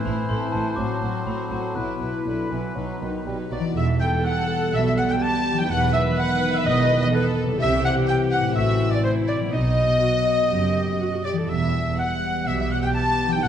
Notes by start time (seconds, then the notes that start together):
Already playing: A2 E3 C4 E4 C5 E5 A5
0.04 A1 A2 A3 E4 C5 B5
0.12 E4
0.29 A1 A2 E3 A3 C4 E4 C5 C6
0.45 E5
0.52 A1 A2 A3 E4 C5 A5
0.62 A4
0.76 A1 A2 F#3 C4 F#4 C5 D6
0.94 C4
1.02 A1 A2 F#3 F#4 C5 C6
1.11 F#4
1.26 A1 A2 F#3 F#4 C5 B5
1.43 F#5
1.50 A1 A2 F#3 F#4 C5 A5
1.59 A4
1.75 B1 B2 F#3 E4 B4 B5 F#6
1.93 B3
2.01 B1 B2 F#3 E4 B4
2.10 E4
2.26 B1 B2 D3 F#3 E4 B4
2.43 E5
2.51 B1 B2 E3 F#3 E4 B4
2.60 F#4
2.75 B1 B2 F#3 D#4 B4
2.93 B3
3.00 B1 B2 D#3 F#3 D#4 B4
3.10 D#4
3.25 B1 B2 F#3 G3 D#4 B4
3.43 D#5
3.50 B1 B2 F#3 D#4 B4 D5
3.59 E3 F#4
3.63 B3
3.68 E4
3.73 E1 E2 G3 B3 G4 E5
3.77 A4 E5
4.00 G5
4.24 F#5
4.73 B1 B2 E5
4.84 E5
4.89 E5
4.97 F#5
5.09 G5
5.20 G4 A5
5.52 E3
5.56 F#3 G5
5.61 D#4
5.66 E1 E2 B4 F#5
5.71 D#3 F#5
5.93 E5
6.17 F#5
6.53 E5
6.58 E5
6.65 E1 E2 D#5
7.00 D#5
7.13 A4 B4
7.43 C3
7.48 G3
7.52 E4
7.57 G4 C5 E5
7.62 C2 C3 E3 C4 E5
7.85 F#5
8.08 G5
8.31 F#5
8.38 A2
8.42 A3
8.47 E4
8.51 C5 E5
8.55 A1 A2 F#4 E5
8.90 D5
8.95 D5
9.03 E4 C5
9.28 D5
9.36 B2
9.40 F#3
9.45 B3
9.50 B1 B2 D#4 B4 D#5
9.54 F#3 B3
10.02 F#4
10.51 F#1 F#2 G4
11.00 F#4
11.13 F#4
11.23 G4 D5
11.32 E3
11.37 G3 A4
11.42 B3
11.46 E1 G3 B4 E5
11.50 E2 B3 E5
11.98 F#5
12.47 B1 B2 G4 E5
12.59 E5
12.71 F#5
12.82 G5
12.94 A5
13.26 E3
13.31 F#3 G5
13.36 D#4
13.40 E1 E2 A4 B4 F#5
13.44 D#3